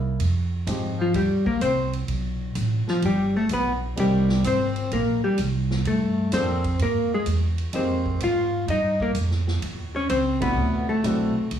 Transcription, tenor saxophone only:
0.98 1.13 F3 medium
1.16 1.45 G3 medium
1.48 1.61 A#3 medium
1.64 1.92 C4 medium
2.88 3.02 F3 medium
3.05 3.34 G3 medium
3.36 3.50 A3 medium
3.52 3.81 B3 medium
3.99 4.42 G3 medium
4.44 4.88 C4 medium
4.93 5.22 A#3 medium
5.24 5.38 G3 medium
5.88 6.31 A3 medium
6.35 6.78 C4 medium
6.81 7.10 A#3 medium
7.14 7.27 G#3 medium
7.76 8.19 C4 medium
8.22 8.66 F4 medium
8.68 8.98 D#4 medium
9.00 9.15 A#3 medium
9.95 10.09 C#4 medium
10.10 10.39 C4 medium
10.41 10.85 B3 medium
10.89 11.47 A3 medium

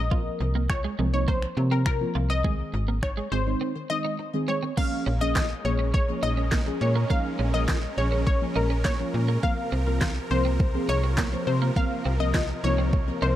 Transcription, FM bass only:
0.00 0.30 A#1 loud
0.40 0.88 C2 medium
0.99 1.46 C2 medium
1.57 2.04 C3 loud
2.15 2.63 C2 loud
2.74 3.21 G#1 loud
3.32 3.55 G#1 medium
5.07 5.54 A#1 medium
5.65 6.12 A#1 medium
6.23 6.70 A#1 medium
6.81 7.05 A#2 loud
7.39 7.87 A#1 loud
7.98 8.45 A#1 medium
8.56 9.03 A#1 medium
9.14 9.38 A#2 loud
9.72 10.20 C2 medium
10.31 10.78 C2 medium
10.89 11.36 C2 medium
11.47 11.71 C3 loud
12.06 12.53 C2 loud
12.64 13.11 C2 medium
13.22 13.36 C2 medium

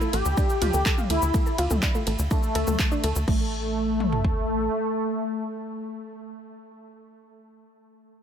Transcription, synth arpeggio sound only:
0.01 0.10 A3 loud
0.01 0.10 A4 medium
0.13 0.25 A3 medium
0.13 0.25 A4 medium
0.37 0.43 D4 loud
0.37 0.43 D5 medium
0.62 0.73 F4 loud
0.62 0.73 F5 medium
0.74 0.82 A3 medium
0.74 0.82 A4 medium
0.86 0.91 A4 medium
0.86 0.91 A5 medium
0.98 1.09 F4 medium
0.98 1.09 F5 medium
1.10 1.22 A3 medium
1.10 1.22 A4 medium
1.34 1.39 A3 loud
1.34 1.39 A4 medium
1.46 1.55 A4 medium
1.46 1.55 A5 medium
1.58 1.70 F4 loud
1.58 1.70 F5 medium
1.71 1.76 A3 medium
1.71 1.76 A4 medium
1.83 1.91 D4 medium
1.83 1.91 D5 medium
1.95 2.03 A3 loud
1.95 2.03 A4 medium
2.07 2.18 A3 medium
2.07 2.18 A4 medium
2.31 2.36 D4 loud
2.31 2.36 D5 medium
2.55 2.64 A4 loud
2.55 2.64 A5 medium
2.67 2.76 A3 medium
2.67 2.76 A4 medium
2.79 2.91 A5 loud
2.79 2.91 A6 medium
2.91 3.03 D4 loud
2.91 3.03 D5 medium
3.04 3.12 A4 medium
3.04 3.12 A5 medium
3.28 3.50 A3 loud

